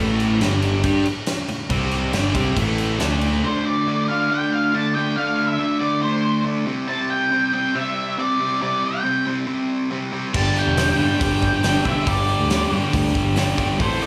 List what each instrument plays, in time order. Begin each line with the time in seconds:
Already playing: fingered electric bass A1, overdriven electric guitar A2
0.00 overdriven electric guitar E3 A3
0.20 tambourine, crash
0.41 fingered electric bass G1, overdriven electric guitar G2 D3 G3, snare, tambourine, crash
0.52 tambourine
0.62 tambourine, crash
0.83 fingered electric bass G2, overdriven electric guitar G3 D4 G4, kick, tambourine, crash
0.95 tambourine
1.05 tambourine, crash
1.26 snare, tambourine, crash
1.48 muted fingered electric bass stroke, muted overdriven electric guitar stroke, crash
1.60 tambourine
1.69 fingered electric bass C2, overdriven electric guitar C3 G3 C4, kick, tambourine, crash
1.82 tambourine
1.91 tambourine, crash
2.13 fingered electric bass G1, overdriven electric guitar G2 D3 G3, snare, tambourine, crash
2.35 fingered electric bass C2, overdriven electric guitar C3 G3 C4, kick, tambourine, crash
2.56 fingered electric bass A1, overdriven electric guitar A2 E3 A3, kick, tambourine, crash
2.78 tambourine, crash
2.89 tambourine
3.00 fingered electric bass D2, overdriven electric guitar D3 A3 D4, snare, tambourine, crash
3.21 tambourine, crash
3.32 tambourine
3.43 overdriven electric guitar D3 A3 D4, lead electric guitar C5
3.66 lead electric guitar D5
3.87 overdriven electric guitar D3 A3 D4
4.08 overdriven electric guitar D3 A3 D4, lead electric guitar F5
4.30 overdriven electric guitar D3 A3 D4, lead electric guitar G5
4.52 lead electric guitar F5
4.74 overdriven electric guitar D3 A3 D4, lead electric guitar A5
4.95 overdriven electric guitar D3 A3 D4, lead electric guitar G5
5.16 overdriven electric guitar D3 A3 D4, lead electric guitar F5
5.47 lead electric guitar E5
5.59 overdriven electric guitar D3 A3 D4
5.79 overdriven electric guitar D3 A3 D4, lead electric guitar D5
6.02 overdriven electric guitar D3 A3 D4, lead electric guitar C5
6.45 overdriven electric guitar D3 A3 D4
6.66 overdriven electric guitar C3 G3 C4
6.88 overdriven electric guitar C3 G3 C4, lead electric guitar A5
7.10 lead electric guitar G5
7.31 overdriven electric guitar C3 G3 C4
7.53 overdriven electric guitar C3 G3 C4, lead electric guitar G5
7.75 overdriven electric guitar C3 G3 C4, lead electric guitar E5
8.18 overdriven electric guitar C3 G3 C4, lead electric guitar D5
8.40 overdriven electric guitar C3 G3 C4
8.61 overdriven electric guitar C3 G3 C4, lead electric guitar D5
8.85 lead electric guitar G5
9.04 overdriven electric guitar C3 G3 C4
9.26 overdriven electric guitar C3 G3 C4
9.47 overdriven electric guitar C3 G3 C4
9.91 overdriven electric guitar C3 G3 C4
10.13 overdriven electric guitar C3 G3 C4
10.33 fingered electric bass G1, overdriven electric guitar G2 D3 G3 B3 D4 G4, lead electric guitar A5, kick, crash
10.56 lead electric guitar G5, tambourine
10.66 fingered electric bass E1
10.77 overdriven electric guitar G2 D3 G3 B3 D4 G4, snare, open hi-hat, tambourine
10.99 overdriven electric guitar G2 D3 G3 B3 D4 G4, fingered electric bass G2, lead electric guitar G5
11.20 fingered electric bass G1, overdriven electric guitar G2 D3 G3 B3 D4 G4, kick, open hi-hat, tambourine
11.41 kick, tambourine
11.53 fingered electric bass G1
11.63 overdriven electric guitar G2 D3 G3 B3 D4 G4, lead electric guitar G5, snare, open hi-hat, tambourine
11.85 fingered electric bass B1, overdriven electric guitar G2 D3 G3 B3 D4 G4, lead electric guitar E5, kick, tambourine
12.06 fingered electric bass G1, overdriven electric guitar G2 D3 G3 B3 D4 G4, lead electric guitar D5, kick, open hi-hat, tambourine
12.28 tambourine
12.39 fingered electric bass D2
12.50 overdriven electric guitar G2 D3 G3 B3 D4 G4, snare, open hi-hat, tambourine
12.71 fingered electric bass G2, overdriven electric guitar G2 D3 G3 B3 D4 G4
12.93 fingered electric bass D2, overdriven electric guitar G2 D3 G3 B3 D4 G4, kick, open hi-hat, tambourine
13.15 kick, tambourine
13.25 fingered electric bass G1
13.36 overdriven electric guitar G2 D3 G3 B3 D4 G4, snare, open hi-hat, tambourine
13.58 fingered electric bass G1, overdriven electric guitar G2 D3 G3 B3 D4 G4, kick, tambourine
13.79 fingered electric bass A1, overdriven electric guitar A2 E3 A3 C4 E4 A4, lead electric guitar C5, kick, open hi-hat, tambourine
14.02 lead electric guitar D5, tambourine